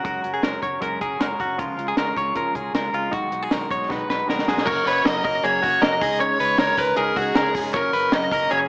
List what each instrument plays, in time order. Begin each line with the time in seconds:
0.04 fingered electric bass F#1, clean electric guitar F#3 G#3 C#4 F#4 A#4, kick, closed hi-hat
0.23 fingered electric bass F#1, clean electric guitar C#4 F#4 A#4, closed hi-hat
0.34 clean electric guitar G#4
0.42 fingered electric bass F#1, clean electric guitar G#3 C#4 F#4 A#4, snare, closed hi-hat
0.62 fingered electric bass F#1, clean electric guitar C#4 F#4 A#4 C#5, kick, closed hi-hat
0.80 fingered electric bass F#1, clean electric guitar F#3 G#3 C#4 F#4 A#4, kick, closed hi-hat
1.00 fingered electric bass F#1, clean electric guitar C#4 F#4 G#4 A#4, kick, closed hi-hat
1.19 fingered electric bass F#1, clean electric guitar G#3 C#4 F#4 A#4, snare, closed hi-hat
1.39 fingered electric bass F#1, clean electric guitar C#4 F#4 A#4, kick, closed hi-hat
1.57 fingered electric bass C#2, clean electric guitar C#3 F3 G#3 C#4 F4 A#4, kick, closed hi-hat
1.77 fingered electric bass C#2, clean electric guitar G#3 C#4 F4 A#4, closed hi-hat
1.88 clean electric guitar G#4
1.96 fingered electric bass C#2, clean electric guitar G#3 C#4 F4 A#4, snare, closed hi-hat
2.15 fingered electric bass C#2, clean electric guitar G#3 C#4 F4 A#4 C#5, kick, closed hi-hat
2.35 fingered electric bass C#2, clean electric guitar C#3 F3 G#3 C#4 F4 A#4, kick, closed hi-hat
2.54 fingered electric bass C#2, clean electric guitar G#3 C#4 F4 G#4 A#4, kick, closed hi-hat
2.73 fingered electric bass C#2, clean electric guitar G#3 C#4 F4 A#4, snare, closed hi-hat
2.92 fingered electric bass C#2, clean electric guitar G#3 C#4 F4 A#4, closed hi-hat
3.11 fingered electric bass B1, clean electric guitar B2 D#3 G#3 D#4 F#4, kick, closed hi-hat
3.31 fingered electric bass B1, clean electric guitar G#3 D#4 F#4, closed hi-hat
3.43 clean electric guitar G#4
3.50 fingered electric bass B1, clean electric guitar D#3 G#3 D#4 F#4 A#4, snare, closed hi-hat
3.69 fingered electric bass B1, clean electric guitar G#3 D#4 F#4 C#5, kick, closed hi-hat
3.88 fingered electric bass B1, clean electric guitar B2 D#3 G#3 D#4 F#4 B4, kick, snare
4.07 fingered electric bass B1, clean electric guitar G#3 D#4 F#4 B4, snare
4.26 fingered electric bass B1, clean electric guitar D#3 G#3 D#4 F#4, snare
4.30 clean electric guitar A#4
4.39 snare
4.46 fingered electric bass B1, clean electric guitar G#3 D#4 F#4 G#4, snare
4.58 snare
4.65 fingered electric bass F#1, clean electric guitar F#3 A#3 C#4 F#4 C#5, lead electric guitar A#4, kick, crash
4.84 fingered electric bass F#1, clean electric guitar A#3 C#4 F#4 B4, lead electric guitar C#5, hi-hat pedal, open hi-hat
5.04 fingered electric bass F#1, clean electric guitar F#3 A#3 C#4 F#4 A#4, lead electric guitar D#5, snare, hi-hat pedal, open hi-hat
5.23 fingered electric bass F#1, clean electric guitar A#3 C#4 F#4 A#4, lead electric guitar D#5, kick, hi-hat pedal, open hi-hat
5.42 fingered electric bass F#1, clean electric guitar F#3 A#3 C#4 F#4 G#4, lead electric guitar C#5, hi-hat pedal, open hi-hat
5.62 fingered electric bass F#1, clean electric guitar A#3 C#4 F#4, kick, hi-hat pedal, open hi-hat
5.81 fingered electric bass F#1, clean electric guitar F#3 A#3 C#4 F#4 A#4, lead electric guitar D#5, snare, hi-hat pedal, open hi-hat
5.99 fingered electric bass C#2, clean electric guitar G#3 C#4 D#4 G#4, kick, hi-hat pedal, open hi-hat
6.20 clean electric guitar C#3 G#3 C#4 D#4 C#5, lead electric guitar C#5, hi-hat pedal, open hi-hat
6.39 fingered electric bass C#2, clean electric guitar G#3 C#4 D#4 B4, hi-hat pedal, open hi-hat
6.58 fingered electric bass C#2, clean electric guitar C#3 G#3 C#4 D#4 A#4, lead electric guitar C#5, snare, hi-hat pedal, open hi-hat
6.77 fingered electric bass C#2, clean electric guitar G#3 C#4 D#4 A#4, lead electric guitar B4, kick, hi-hat pedal, open hi-hat
6.96 fingered electric bass C#2, clean electric guitar C#3 G#3 C#4 D#4 G#4, lead electric guitar A#4, hi-hat pedal, open hi-hat
7.15 fingered electric bass C#2, clean electric guitar G#3 C#4 D#4 F#4, lead electric guitar G#4, kick, hi-hat pedal, open hi-hat
7.35 fingered electric bass C#2, clean electric guitar C#3 G#3 C#4 D#4 A#4, snare, hi-hat pedal, open hi-hat
7.55 fingered electric bass F1, clean electric guitar G#3 C#4 D#4 G#4, kick, hi-hat pedal, open hi-hat
7.74 fingered electric bass F#1, clean electric guitar F#2 C#3 F#3 A#3 C#4 C#5, lead electric guitar A#4, kick, hi-hat pedal, open hi-hat
7.93 fingered electric bass F#1, clean electric guitar F#3 A#3 C#4 B4, hi-hat pedal, open hi-hat
8.12 fingered electric bass F#1, clean electric guitar F#2 C#3 F#3 A#3 C#4 A#4, lead electric guitar D#5, snare, hi-hat pedal, open hi-hat
8.31 fingered electric bass F#1, clean electric guitar F#3 A#3 C#4 A#4, kick, hi-hat pedal, open hi-hat
8.51 fingered electric bass F#1, clean electric guitar C#3 F#3 A#3 C#4 G#4, lead electric guitar C#5, hi-hat pedal, open hi-hat